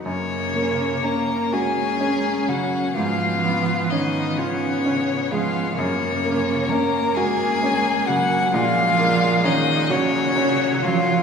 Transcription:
X:1
M:6/8
L:1/8
Q:3/8=43
K:F#
V:1 name="Violin"
c2 a g2 f | e2 d c2 e | c2 a g2 f | e2 d c2 e |]
V:2 name="Violin"
C2 A G2 F | E2 D C2 E | C2 A G2 F | E2 D C2 E |]
V:3 name="Grand piano"
F,, A, C F C C, | G,, B, C E C G, | F,, A, C F C C, | A,, A, C F C F, |]
V:4 name="Viola"
A,3 C3 | B,6 | A,6 | G,3 F,3 |]
V:5 name="Cello" clef=bass
C,2 A, G,2 F, | E,2 D, C,2 E, | C,2 A, G,2 F, | E,2 D, C,2 E, |]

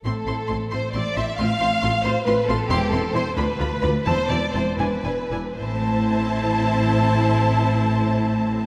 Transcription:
X:1
M:6/8
L:1/8
Q:3/8=85
K:Am
V:1 name="Violin section"
c' c' c' c' c' c' | c' c' c' c' c' c' | c' c' c' b b b | a a a ^g g g |
a6- | a6 |]
V:2 name="Violin section"
A3 c d e | f3 c B A | G A c B3 | c d c B3 |
c6- | c6 |]
V:3 name="Viola section"
[CE] [CE] [CE] [CE] [CE] [CE] | [CF] [CF] [CF] [CF] [CF] [CF] | [CE] [CE] [CE] [DF] [DF] [DF] | [CE] [CE] [CE] [DE] [DE] [DE] |
[CE]6- | [CE]6 |]
V:4 name="Cello section" clef=bass
A,, A,, A,, A,, A,, A,, | A,, A,, A,, A,, A,, A,, | E,, E,, E,, D,, D,, D,, | E,, E,, E,, E,, E,, E,, |
A,,6- | A,,6 |]
V:5 name="Double bass section" clef=bass
A,,, A,,, A,,, A,,, A,,, A,,, | A,,, A,,, A,,, A,,, A,,, A,,, | E,,, E,,, E,,, D,, D,, D,, | E,,, E,,, E,,, E,,, E,,, E,,, |
A,,,6- | A,,,6 |]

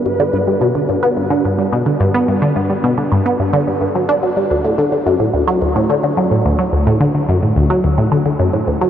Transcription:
X:1
M:4/4
L:1/16
Q:1/4=108
K:G
V:1 name="Synth arpeggio sound" clef=bass
G,, D, G,, G, B,, D, G,, B, G,, D, G,, G, B,, D, G,, B, | G,, D, G,, G, B,, D, G,, B, G,, D, G,, G,, F, D F, G, | D,, A,, D, D, F,, A,, D,, F, D,, A,, D, D, F,, A,, D,, F, | D,, A,, D, D, F,, A,, D,, F, D,, A,, D, D, F,, A,, D,, F, |]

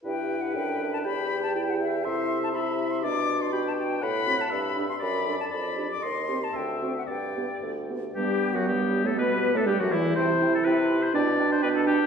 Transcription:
X:1
M:2/4
L:1/16
Q:1/4=120
K:G
V:1 name="Flute"
g3 f g3 a | b3 a g f e2 | c'3 a b3 c' | d'3 c' b a g2 |
b3 a b3 c' | b3 a b3 d' | c'3 a g3 f | g4 z4 |
G3 F G3 A | B3 A G F E2 | g2 g2 g2 g2 | g2 g2 g2 g2 |]
V:2 name="Oboe"
B8 | g8 | e4 e4 | d4 g4 |
f4 e4 | d4 d4 | _e2 z2 =e4 | d6 z2 |
G3 F G3 A | B3 A G F E2 | c3 A B3 c | d3 c B A G2 |]
V:3 name="Clarinet"
G4 A4 | G4 E4 | A4 G4 | G4 F4 |
z2 F2 z2 G2 | z2 A2 z2 G2 | z2 G2 z2 F2 | z2 G2 z2 G2 |
B,8 | G8 | E8 | D8 |]
V:4 name="French horn"
E4 D4 | G8 | E4 E4 | D4 D4 |
z2 C2 z2 D2 | z2 D2 z2 D2 | z2 C2 z2 C2 | z2 B,2 z2 B,2 |
G,3 F, G,3 A, | B,3 A, G, F, E,2 | E2 E2 E2 E2 | D2 D2 D2 D2 |]
V:5 name="Bassoon" clef=bass
G,,4 F,,4 | E,,8 | C,8 | B,,8 |
A,,4 G,,4 | F,,4 =F,,4 | _E,,4 D,,4 | G,,4 D,,4 |
G,,3 F,, G,,3 A,, | B,,3 A,, G,, F,, E,,2 | C,4 C,4 | B,,4 B,,4 |]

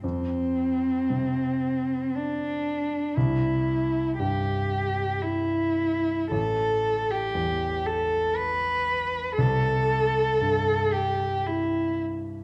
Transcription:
X:1
M:3/4
L:1/16
Q:1/4=58
K:C
V:1 name="Cello"
C8 D4 | E4 G4 E4 | A3 G3 A2 B4 | A6 G2 E2 z2 |]
V:2 name="Grand piano" clef=bass
F,,4 C,8 | C,,4 G,,8 | A,,,4 E,,8 | C,,4 G,,8 |]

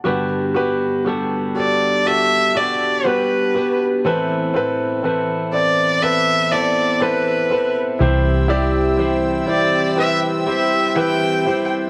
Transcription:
X:1
M:4/4
L:1/16
Q:1/4=60
K:G
V:1 name="String section"
z16 | z16 | [Cege']16 |]
V:2 name="Violin"
z6 d2 e2 d2 B3 z | z6 d2 e2 d2 B3 z | z6 d2 e2 e2 g3 z |]
V:3 name="Grand piano"
[FGB]2 [FGB]2 [FGA]2 [FGA]2 [FGA]2 [FGd]2 [FGB]2 [FGB]2 | [CAB]2 [CAB]2 [CAB]2 [CAd]2 [CAB]2 [CAd]2 [CAB]2 [CAB]2 | [EGc]2 [EGd]2 [EGc]2 [EGc]2 [EGB]2 [EGc]2 [EGB]2 [EGc]2 |]
V:4 name="Grand piano" clef=bass
[G,,D,]6 z8 z2 | [A,,E,]6 z8 z2 | [C,G,]6 z8 z2 |]
V:5 name="Clean electric guitar"
[G,B,DF]2 [DF]2 [G,B,DF]6 [B,DF]2 [G,B,DF]2 [B,DF]2 | [A,,E,B,CE]2 [B,CE]2 [E,B,CE]6 [B,CE]2 [E,B,CE]2 [B,CE]2 | [C,E,G,CE]2 [G,CE]2 [E,G,CE]6 [G,CE]2 [E,G,CE]2 [G,CE]2 |]
V:6 name="Fingered electric bass" clef=bass
z16 | z16 | C,,6 G,,,8 z2 |]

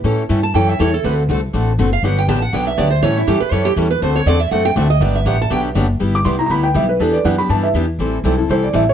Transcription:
X:1
M:4/4
L:1/8
Q:"Swing" 1/4=242
K:G
V:1 name="Felt piano"
z8 | z8 | z8 | z8 |
z8 | z8 | z d' c' _b [b=b] g e B | A d f b a e z2 |
z4 c d e ^c |]
V:2 name="Steel-string acoustic guitar"
z3 a g e ^c A | B z6 =f | f g a f g e d c | ^c E G B c G z B |
c ^c d e f g e _e | d e f a g z3 | z8 | z8 |
z8 |]
V:3 name="Steel-string acoustic guitar"
[E,G,^CEA] z [E,G,CEA] z [E,G,CEA] z [E,G,CEA] z | [D,A,CFA] z [D,A,CFA] z [D,A,CFA] z [D,A,CFA] z | [D,F,B,DG] z [D,F,B,DG] z [D,F,B,DG] z [D,F,B,DG] z | [E,G,^CEA] z [E,G,CEA] z [E,G,CEA] z [E,G,CEA] z |
[D,A,CFA] z [D,A,CFA] z [D,A,CFA] z [D,A,CFA] z | [D,F,B,DG] z [D,F,B,DG] z [D,F,B,DG] z [D,F,B,DG] z | [G,B,EG] z [G,B,EG] [B,EG] [G,B,EG] z [G,B,EG] z | [E,B,DG] z [E,B,DG] [B,DG] [E,B,DG] z [E,B,DG] z |
[E,G,CEA] z [E,G,CEA] [CEA] [E,G,CEA] z [E,G,CEA] z |]
V:4 name="Steel-string acoustic guitar"
[E,G,^CEA] z [E,G,CEA] z [E,G,CEA] z [E,G,CEA] z | [D,A,CFA] z [D,A,CFA] z [D,A,CFA] z [D,A,CFA] z | [D,F,B,DG] z [D,F,B,DG] z [D,F,B,DG] z [D,F,B,DG] z | [E,G,^CEA] z [E,G,CEA] z [E,G,CEA] z [E,G,CEA] z |
[D,A,CFA] z [D,A,CFA] z [D,A,CFA] z [D,A,CFA] z | [D,F,B,DG] z [D,F,B,DG] z [D,F,B,DG] z [D,F,B,DG] z | [G,B,EG] z [G,B,EG] z [G,B,EG] z [G,B,EG] z | [E,G,DEB] z [E,G,DEB] z [E,G,DEB] z [E,G,DEB] z |
[E,G,CEA] z [E,G,CEA] z [E,G,CEA] z [E,G,CEA] z |]
V:5 name="Upright bass" clef=bass
A,,2 G,,2 F,,2 E,,2 | D,,2 C,,2 A,,,2 F,,,2 | G,,,2 A,,,2 B,,,2 D,,2 | A,,2 G,, z F,,2 E,,2 |
D,,2 E,,2 F,,2 D,,2 | G,,,2 A,,,2 B,,,2 F,,,2 | G,,,2 C,,2 D,,2 B,,,2 | E,,2 F,,2 G,,2 E,,2 |
A,,,2 B,,,2 C,,2 A,,,2 |]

